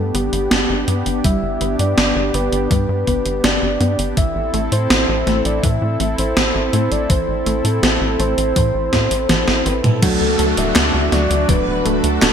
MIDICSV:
0, 0, Header, 1, 9, 480
1, 0, Start_track
1, 0, Key_signature, 1, "major"
1, 0, Tempo, 731707
1, 817, Time_signature, 4, 2, 24, 8
1, 8088, End_track
2, 0, Start_track
2, 0, Title_t, "Soft synth lead"
2, 0, Program_c, 0, 80
2, 0, Note_on_c, 0, 69, 93
2, 99, Note_on_c, 0, 67, 87
2, 109, Note_off_c, 0, 69, 0
2, 578, Note_off_c, 0, 67, 0
2, 817, Note_on_c, 0, 76, 115
2, 1152, Note_off_c, 0, 76, 0
2, 1179, Note_on_c, 0, 74, 110
2, 1537, Note_on_c, 0, 71, 100
2, 1547, Note_off_c, 0, 74, 0
2, 1774, Note_off_c, 0, 71, 0
2, 1778, Note_on_c, 0, 71, 107
2, 2258, Note_on_c, 0, 74, 102
2, 2268, Note_off_c, 0, 71, 0
2, 2617, Note_off_c, 0, 74, 0
2, 2737, Note_on_c, 0, 76, 110
2, 3072, Note_off_c, 0, 76, 0
2, 3098, Note_on_c, 0, 72, 94
2, 3551, Note_off_c, 0, 72, 0
2, 3578, Note_on_c, 0, 74, 89
2, 3689, Note_off_c, 0, 74, 0
2, 3698, Note_on_c, 0, 76, 106
2, 4032, Note_off_c, 0, 76, 0
2, 4059, Note_on_c, 0, 72, 93
2, 4538, Note_on_c, 0, 74, 94
2, 4548, Note_off_c, 0, 72, 0
2, 4657, Note_on_c, 0, 72, 102
2, 4667, Note_off_c, 0, 74, 0
2, 5020, Note_on_c, 0, 69, 89
2, 5029, Note_off_c, 0, 72, 0
2, 5376, Note_off_c, 0, 69, 0
2, 5379, Note_on_c, 0, 72, 100
2, 6312, Note_off_c, 0, 72, 0
2, 6340, Note_on_c, 0, 71, 81
2, 6561, Note_off_c, 0, 71, 0
2, 6579, Note_on_c, 0, 69, 94
2, 6940, Note_on_c, 0, 76, 95
2, 6949, Note_off_c, 0, 69, 0
2, 7298, Note_on_c, 0, 74, 96
2, 7308, Note_off_c, 0, 76, 0
2, 7539, Note_on_c, 0, 71, 95
2, 7548, Note_off_c, 0, 74, 0
2, 7778, Note_on_c, 0, 69, 102
2, 7788, Note_off_c, 0, 71, 0
2, 8088, Note_off_c, 0, 69, 0
2, 8088, End_track
3, 0, Start_track
3, 0, Title_t, "String machine"
3, 0, Program_c, 1, 50
3, 6580, Note_on_c, 1, 69, 99
3, 6913, Note_off_c, 1, 69, 0
3, 6941, Note_on_c, 1, 76, 97
3, 7274, Note_off_c, 1, 76, 0
3, 7301, Note_on_c, 1, 74, 97
3, 7522, Note_off_c, 1, 74, 0
3, 7541, Note_on_c, 1, 71, 97
3, 7762, Note_off_c, 1, 71, 0
3, 7779, Note_on_c, 1, 69, 99
3, 8088, Note_off_c, 1, 69, 0
3, 8088, End_track
4, 0, Start_track
4, 0, Title_t, "Analog synth pad"
4, 0, Program_c, 2, 89
4, 0, Note_on_c, 2, 59, 77
4, 0, Note_on_c, 2, 62, 71
4, 0, Note_on_c, 2, 67, 85
4, 2710, Note_off_c, 2, 62, 0
4, 2711, Note_off_c, 2, 59, 0
4, 2711, Note_off_c, 2, 67, 0
4, 2736, Note_on_c, 2, 60, 81
4, 2736, Note_on_c, 2, 64, 72
4, 2736, Note_on_c, 2, 69, 88
4, 6550, Note_off_c, 2, 60, 0
4, 6550, Note_off_c, 2, 64, 0
4, 6550, Note_off_c, 2, 69, 0
4, 6577, Note_on_c, 2, 57, 80
4, 6577, Note_on_c, 2, 62, 74
4, 6577, Note_on_c, 2, 66, 87
4, 8088, Note_off_c, 2, 57, 0
4, 8088, Note_off_c, 2, 62, 0
4, 8088, Note_off_c, 2, 66, 0
4, 8088, End_track
5, 0, Start_track
5, 0, Title_t, "FM electric piano"
5, 0, Program_c, 3, 5
5, 6577, Note_on_c, 3, 54, 88
5, 6577, Note_on_c, 3, 57, 80
5, 6577, Note_on_c, 3, 62, 86
5, 6577, Note_on_c, 3, 66, 99
5, 7268, Note_off_c, 3, 54, 0
5, 7268, Note_off_c, 3, 57, 0
5, 7268, Note_off_c, 3, 62, 0
5, 7268, Note_off_c, 3, 66, 0
5, 7296, Note_on_c, 3, 54, 86
5, 7296, Note_on_c, 3, 57, 75
5, 7296, Note_on_c, 3, 62, 78
5, 7296, Note_on_c, 3, 66, 92
5, 8088, Note_off_c, 3, 54, 0
5, 8088, Note_off_c, 3, 57, 0
5, 8088, Note_off_c, 3, 62, 0
5, 8088, Note_off_c, 3, 66, 0
5, 8088, End_track
6, 0, Start_track
6, 0, Title_t, "Synth arpeggio sound"
6, 0, Program_c, 4, 84
6, 0, Note_on_c, 4, 55, 96
6, 84, Note_off_c, 4, 55, 0
6, 96, Note_on_c, 4, 59, 77
6, 190, Note_off_c, 4, 59, 0
6, 337, Note_on_c, 4, 62, 75
6, 430, Note_off_c, 4, 62, 0
6, 577, Note_on_c, 4, 59, 76
6, 732, Note_off_c, 4, 59, 0
6, 818, Note_on_c, 4, 55, 104
6, 1045, Note_off_c, 4, 55, 0
6, 1057, Note_on_c, 4, 59, 70
6, 1150, Note_off_c, 4, 59, 0
6, 1297, Note_on_c, 4, 62, 77
6, 1390, Note_off_c, 4, 62, 0
6, 1537, Note_on_c, 4, 59, 74
6, 1692, Note_off_c, 4, 59, 0
6, 1777, Note_on_c, 4, 55, 91
6, 2005, Note_off_c, 4, 55, 0
6, 2018, Note_on_c, 4, 59, 75
6, 2111, Note_off_c, 4, 59, 0
6, 2258, Note_on_c, 4, 62, 75
6, 2351, Note_off_c, 4, 62, 0
6, 2497, Note_on_c, 4, 59, 78
6, 2652, Note_off_c, 4, 59, 0
6, 2737, Note_on_c, 4, 52, 102
6, 2965, Note_off_c, 4, 52, 0
6, 2976, Note_on_c, 4, 57, 74
6, 3070, Note_off_c, 4, 57, 0
6, 3216, Note_on_c, 4, 60, 76
6, 3310, Note_off_c, 4, 60, 0
6, 3457, Note_on_c, 4, 57, 76
6, 3612, Note_off_c, 4, 57, 0
6, 3696, Note_on_c, 4, 52, 97
6, 3925, Note_off_c, 4, 52, 0
6, 3936, Note_on_c, 4, 57, 75
6, 4030, Note_off_c, 4, 57, 0
6, 4177, Note_on_c, 4, 60, 76
6, 4270, Note_off_c, 4, 60, 0
6, 4417, Note_on_c, 4, 57, 75
6, 4572, Note_off_c, 4, 57, 0
6, 4658, Note_on_c, 4, 52, 102
6, 4885, Note_off_c, 4, 52, 0
6, 4898, Note_on_c, 4, 57, 76
6, 4990, Note_off_c, 4, 57, 0
6, 5137, Note_on_c, 4, 60, 76
6, 5230, Note_off_c, 4, 60, 0
6, 5377, Note_on_c, 4, 57, 76
6, 5532, Note_off_c, 4, 57, 0
6, 5617, Note_on_c, 4, 52, 102
6, 5845, Note_off_c, 4, 52, 0
6, 5857, Note_on_c, 4, 64, 81
6, 6085, Note_off_c, 4, 64, 0
6, 6097, Note_on_c, 4, 52, 77
6, 6325, Note_off_c, 4, 52, 0
6, 6337, Note_on_c, 4, 60, 76
6, 6493, Note_off_c, 4, 60, 0
6, 6578, Note_on_c, 4, 54, 103
6, 6805, Note_off_c, 4, 54, 0
6, 6817, Note_on_c, 4, 57, 74
6, 6910, Note_off_c, 4, 57, 0
6, 7057, Note_on_c, 4, 62, 74
6, 7150, Note_off_c, 4, 62, 0
6, 7297, Note_on_c, 4, 57, 77
6, 7452, Note_off_c, 4, 57, 0
6, 7538, Note_on_c, 4, 54, 99
6, 7765, Note_off_c, 4, 54, 0
6, 7778, Note_on_c, 4, 57, 77
6, 7870, Note_off_c, 4, 57, 0
6, 8017, Note_on_c, 4, 62, 78
6, 8088, Note_off_c, 4, 62, 0
6, 8088, End_track
7, 0, Start_track
7, 0, Title_t, "Analog synth bass"
7, 0, Program_c, 5, 38
7, 0, Note_on_c, 5, 43, 73
7, 79, Note_off_c, 5, 43, 0
7, 95, Note_on_c, 5, 31, 100
7, 199, Note_off_c, 5, 31, 0
7, 215, Note_on_c, 5, 31, 79
7, 319, Note_off_c, 5, 31, 0
7, 335, Note_on_c, 5, 31, 95
7, 440, Note_off_c, 5, 31, 0
7, 455, Note_on_c, 5, 31, 76
7, 559, Note_off_c, 5, 31, 0
7, 576, Note_on_c, 5, 43, 89
7, 680, Note_off_c, 5, 43, 0
7, 696, Note_on_c, 5, 31, 77
7, 800, Note_off_c, 5, 31, 0
7, 816, Note_on_c, 5, 31, 98
7, 920, Note_off_c, 5, 31, 0
7, 935, Note_on_c, 5, 31, 77
7, 1040, Note_off_c, 5, 31, 0
7, 1056, Note_on_c, 5, 31, 93
7, 1160, Note_off_c, 5, 31, 0
7, 1176, Note_on_c, 5, 43, 85
7, 1280, Note_off_c, 5, 43, 0
7, 1296, Note_on_c, 5, 31, 96
7, 1400, Note_off_c, 5, 31, 0
7, 1415, Note_on_c, 5, 31, 78
7, 1519, Note_off_c, 5, 31, 0
7, 1535, Note_on_c, 5, 31, 89
7, 1639, Note_off_c, 5, 31, 0
7, 1654, Note_on_c, 5, 31, 80
7, 1759, Note_off_c, 5, 31, 0
7, 1776, Note_on_c, 5, 43, 104
7, 1880, Note_off_c, 5, 43, 0
7, 1895, Note_on_c, 5, 43, 78
7, 1999, Note_off_c, 5, 43, 0
7, 2017, Note_on_c, 5, 31, 92
7, 2120, Note_off_c, 5, 31, 0
7, 2136, Note_on_c, 5, 31, 81
7, 2240, Note_off_c, 5, 31, 0
7, 2256, Note_on_c, 5, 31, 99
7, 2360, Note_off_c, 5, 31, 0
7, 2376, Note_on_c, 5, 31, 77
7, 2480, Note_off_c, 5, 31, 0
7, 2496, Note_on_c, 5, 43, 96
7, 2600, Note_off_c, 5, 43, 0
7, 2615, Note_on_c, 5, 31, 81
7, 2720, Note_off_c, 5, 31, 0
7, 2737, Note_on_c, 5, 33, 94
7, 2841, Note_off_c, 5, 33, 0
7, 2855, Note_on_c, 5, 33, 77
7, 2960, Note_off_c, 5, 33, 0
7, 2976, Note_on_c, 5, 33, 86
7, 3080, Note_off_c, 5, 33, 0
7, 3096, Note_on_c, 5, 45, 77
7, 3200, Note_off_c, 5, 45, 0
7, 3216, Note_on_c, 5, 33, 99
7, 3320, Note_off_c, 5, 33, 0
7, 3337, Note_on_c, 5, 33, 78
7, 3441, Note_off_c, 5, 33, 0
7, 3456, Note_on_c, 5, 33, 93
7, 3560, Note_off_c, 5, 33, 0
7, 3577, Note_on_c, 5, 33, 80
7, 3680, Note_off_c, 5, 33, 0
7, 3696, Note_on_c, 5, 45, 104
7, 3800, Note_off_c, 5, 45, 0
7, 3817, Note_on_c, 5, 45, 76
7, 3920, Note_off_c, 5, 45, 0
7, 3937, Note_on_c, 5, 33, 100
7, 4040, Note_off_c, 5, 33, 0
7, 4057, Note_on_c, 5, 33, 76
7, 4160, Note_off_c, 5, 33, 0
7, 4177, Note_on_c, 5, 33, 97
7, 4281, Note_off_c, 5, 33, 0
7, 4297, Note_on_c, 5, 33, 73
7, 4401, Note_off_c, 5, 33, 0
7, 4416, Note_on_c, 5, 45, 92
7, 4520, Note_off_c, 5, 45, 0
7, 4536, Note_on_c, 5, 33, 84
7, 4640, Note_off_c, 5, 33, 0
7, 4657, Note_on_c, 5, 33, 101
7, 4760, Note_off_c, 5, 33, 0
7, 4777, Note_on_c, 5, 33, 78
7, 4880, Note_off_c, 5, 33, 0
7, 4896, Note_on_c, 5, 33, 89
7, 5000, Note_off_c, 5, 33, 0
7, 5015, Note_on_c, 5, 45, 78
7, 5119, Note_off_c, 5, 45, 0
7, 5135, Note_on_c, 5, 33, 99
7, 5240, Note_off_c, 5, 33, 0
7, 5255, Note_on_c, 5, 33, 77
7, 5359, Note_off_c, 5, 33, 0
7, 5375, Note_on_c, 5, 33, 92
7, 5480, Note_off_c, 5, 33, 0
7, 5496, Note_on_c, 5, 33, 78
7, 5600, Note_off_c, 5, 33, 0
7, 5617, Note_on_c, 5, 45, 102
7, 5720, Note_off_c, 5, 45, 0
7, 5737, Note_on_c, 5, 33, 73
7, 5840, Note_off_c, 5, 33, 0
7, 5857, Note_on_c, 5, 45, 98
7, 5960, Note_off_c, 5, 45, 0
7, 5976, Note_on_c, 5, 33, 77
7, 6080, Note_off_c, 5, 33, 0
7, 6097, Note_on_c, 5, 33, 101
7, 6200, Note_off_c, 5, 33, 0
7, 6217, Note_on_c, 5, 33, 75
7, 6320, Note_off_c, 5, 33, 0
7, 6337, Note_on_c, 5, 33, 94
7, 6440, Note_off_c, 5, 33, 0
7, 6456, Note_on_c, 5, 45, 80
7, 6560, Note_off_c, 5, 45, 0
7, 6577, Note_on_c, 5, 38, 96
7, 6680, Note_off_c, 5, 38, 0
7, 6696, Note_on_c, 5, 38, 80
7, 6800, Note_off_c, 5, 38, 0
7, 6817, Note_on_c, 5, 38, 86
7, 6920, Note_off_c, 5, 38, 0
7, 6936, Note_on_c, 5, 26, 82
7, 7040, Note_off_c, 5, 26, 0
7, 7057, Note_on_c, 5, 38, 102
7, 7160, Note_off_c, 5, 38, 0
7, 7177, Note_on_c, 5, 38, 77
7, 7280, Note_off_c, 5, 38, 0
7, 7296, Note_on_c, 5, 38, 96
7, 7400, Note_off_c, 5, 38, 0
7, 7416, Note_on_c, 5, 38, 84
7, 7520, Note_off_c, 5, 38, 0
7, 7537, Note_on_c, 5, 26, 106
7, 7641, Note_off_c, 5, 26, 0
7, 7657, Note_on_c, 5, 26, 74
7, 7760, Note_off_c, 5, 26, 0
7, 7776, Note_on_c, 5, 26, 97
7, 7880, Note_off_c, 5, 26, 0
7, 7896, Note_on_c, 5, 38, 82
7, 8000, Note_off_c, 5, 38, 0
7, 8016, Note_on_c, 5, 26, 105
7, 8088, Note_off_c, 5, 26, 0
7, 8088, End_track
8, 0, Start_track
8, 0, Title_t, "Downlifter"
8, 0, Program_c, 6, 103
8, 6577, Note_on_c, 6, 60, 76
8, 8088, Note_off_c, 6, 60, 0
8, 8088, End_track
9, 0, Start_track
9, 0, Title_t, "Drums"
9, 96, Note_on_c, 9, 42, 62
9, 162, Note_off_c, 9, 42, 0
9, 216, Note_on_c, 9, 42, 60
9, 281, Note_off_c, 9, 42, 0
9, 336, Note_on_c, 9, 38, 120
9, 336, Note_on_c, 9, 42, 84
9, 402, Note_off_c, 9, 38, 0
9, 402, Note_off_c, 9, 42, 0
9, 576, Note_on_c, 9, 42, 61
9, 642, Note_off_c, 9, 42, 0
9, 696, Note_on_c, 9, 42, 57
9, 762, Note_off_c, 9, 42, 0
9, 816, Note_on_c, 9, 36, 112
9, 816, Note_on_c, 9, 42, 93
9, 882, Note_off_c, 9, 36, 0
9, 882, Note_off_c, 9, 42, 0
9, 1056, Note_on_c, 9, 42, 63
9, 1121, Note_off_c, 9, 42, 0
9, 1177, Note_on_c, 9, 42, 57
9, 1242, Note_off_c, 9, 42, 0
9, 1296, Note_on_c, 9, 38, 104
9, 1296, Note_on_c, 9, 42, 80
9, 1362, Note_off_c, 9, 38, 0
9, 1362, Note_off_c, 9, 42, 0
9, 1536, Note_on_c, 9, 42, 57
9, 1602, Note_off_c, 9, 42, 0
9, 1657, Note_on_c, 9, 42, 58
9, 1722, Note_off_c, 9, 42, 0
9, 1776, Note_on_c, 9, 36, 113
9, 1777, Note_on_c, 9, 42, 88
9, 1842, Note_off_c, 9, 36, 0
9, 1842, Note_off_c, 9, 42, 0
9, 2017, Note_on_c, 9, 36, 56
9, 2017, Note_on_c, 9, 42, 65
9, 2082, Note_off_c, 9, 36, 0
9, 2082, Note_off_c, 9, 42, 0
9, 2136, Note_on_c, 9, 42, 61
9, 2201, Note_off_c, 9, 42, 0
9, 2256, Note_on_c, 9, 38, 112
9, 2256, Note_on_c, 9, 42, 87
9, 2322, Note_off_c, 9, 38, 0
9, 2322, Note_off_c, 9, 42, 0
9, 2497, Note_on_c, 9, 42, 56
9, 2562, Note_off_c, 9, 42, 0
9, 2617, Note_on_c, 9, 42, 58
9, 2682, Note_off_c, 9, 42, 0
9, 2736, Note_on_c, 9, 42, 92
9, 2737, Note_on_c, 9, 36, 116
9, 2802, Note_off_c, 9, 36, 0
9, 2802, Note_off_c, 9, 42, 0
9, 2977, Note_on_c, 9, 42, 60
9, 3042, Note_off_c, 9, 42, 0
9, 3097, Note_on_c, 9, 42, 63
9, 3162, Note_off_c, 9, 42, 0
9, 3217, Note_on_c, 9, 38, 107
9, 3217, Note_on_c, 9, 42, 89
9, 3282, Note_off_c, 9, 38, 0
9, 3282, Note_off_c, 9, 42, 0
9, 3457, Note_on_c, 9, 38, 34
9, 3457, Note_on_c, 9, 42, 57
9, 3523, Note_off_c, 9, 38, 0
9, 3523, Note_off_c, 9, 42, 0
9, 3577, Note_on_c, 9, 42, 62
9, 3642, Note_off_c, 9, 42, 0
9, 3697, Note_on_c, 9, 36, 108
9, 3697, Note_on_c, 9, 42, 83
9, 3762, Note_off_c, 9, 36, 0
9, 3762, Note_off_c, 9, 42, 0
9, 3936, Note_on_c, 9, 42, 61
9, 4002, Note_off_c, 9, 42, 0
9, 4057, Note_on_c, 9, 42, 62
9, 4122, Note_off_c, 9, 42, 0
9, 4177, Note_on_c, 9, 38, 111
9, 4177, Note_on_c, 9, 42, 93
9, 4243, Note_off_c, 9, 38, 0
9, 4243, Note_off_c, 9, 42, 0
9, 4417, Note_on_c, 9, 42, 63
9, 4482, Note_off_c, 9, 42, 0
9, 4537, Note_on_c, 9, 42, 59
9, 4602, Note_off_c, 9, 42, 0
9, 4656, Note_on_c, 9, 42, 94
9, 4657, Note_on_c, 9, 36, 114
9, 4722, Note_off_c, 9, 36, 0
9, 4722, Note_off_c, 9, 42, 0
9, 4897, Note_on_c, 9, 42, 66
9, 4962, Note_off_c, 9, 42, 0
9, 5017, Note_on_c, 9, 42, 64
9, 5083, Note_off_c, 9, 42, 0
9, 5137, Note_on_c, 9, 38, 104
9, 5137, Note_on_c, 9, 42, 86
9, 5203, Note_off_c, 9, 38, 0
9, 5203, Note_off_c, 9, 42, 0
9, 5377, Note_on_c, 9, 42, 64
9, 5442, Note_off_c, 9, 42, 0
9, 5497, Note_on_c, 9, 42, 64
9, 5562, Note_off_c, 9, 42, 0
9, 5616, Note_on_c, 9, 42, 93
9, 5617, Note_on_c, 9, 36, 113
9, 5682, Note_off_c, 9, 36, 0
9, 5682, Note_off_c, 9, 42, 0
9, 5857, Note_on_c, 9, 36, 56
9, 5857, Note_on_c, 9, 38, 63
9, 5857, Note_on_c, 9, 42, 68
9, 5922, Note_off_c, 9, 36, 0
9, 5922, Note_off_c, 9, 38, 0
9, 5922, Note_off_c, 9, 42, 0
9, 5977, Note_on_c, 9, 42, 65
9, 6042, Note_off_c, 9, 42, 0
9, 6096, Note_on_c, 9, 38, 80
9, 6096, Note_on_c, 9, 42, 92
9, 6162, Note_off_c, 9, 38, 0
9, 6162, Note_off_c, 9, 42, 0
9, 6216, Note_on_c, 9, 38, 73
9, 6282, Note_off_c, 9, 38, 0
9, 6337, Note_on_c, 9, 42, 65
9, 6403, Note_off_c, 9, 42, 0
9, 6456, Note_on_c, 9, 42, 61
9, 6456, Note_on_c, 9, 45, 83
9, 6522, Note_off_c, 9, 42, 0
9, 6522, Note_off_c, 9, 45, 0
9, 6577, Note_on_c, 9, 36, 122
9, 6577, Note_on_c, 9, 42, 103
9, 6577, Note_on_c, 9, 49, 107
9, 6642, Note_off_c, 9, 36, 0
9, 6642, Note_off_c, 9, 42, 0
9, 6642, Note_off_c, 9, 49, 0
9, 6816, Note_on_c, 9, 42, 72
9, 6882, Note_off_c, 9, 42, 0
9, 6937, Note_on_c, 9, 42, 70
9, 7002, Note_off_c, 9, 42, 0
9, 7056, Note_on_c, 9, 38, 121
9, 7056, Note_on_c, 9, 39, 92
9, 7056, Note_on_c, 9, 42, 94
9, 7122, Note_off_c, 9, 38, 0
9, 7122, Note_off_c, 9, 39, 0
9, 7122, Note_off_c, 9, 42, 0
9, 7297, Note_on_c, 9, 38, 35
9, 7297, Note_on_c, 9, 42, 67
9, 7362, Note_off_c, 9, 38, 0
9, 7362, Note_off_c, 9, 42, 0
9, 7417, Note_on_c, 9, 42, 68
9, 7483, Note_off_c, 9, 42, 0
9, 7537, Note_on_c, 9, 36, 127
9, 7537, Note_on_c, 9, 42, 98
9, 7602, Note_off_c, 9, 36, 0
9, 7602, Note_off_c, 9, 42, 0
9, 7777, Note_on_c, 9, 42, 70
9, 7843, Note_off_c, 9, 42, 0
9, 7897, Note_on_c, 9, 42, 66
9, 7963, Note_off_c, 9, 42, 0
9, 8018, Note_on_c, 9, 38, 126
9, 8018, Note_on_c, 9, 39, 105
9, 8018, Note_on_c, 9, 42, 99
9, 8083, Note_off_c, 9, 38, 0
9, 8083, Note_off_c, 9, 39, 0
9, 8083, Note_off_c, 9, 42, 0
9, 8088, End_track
0, 0, End_of_file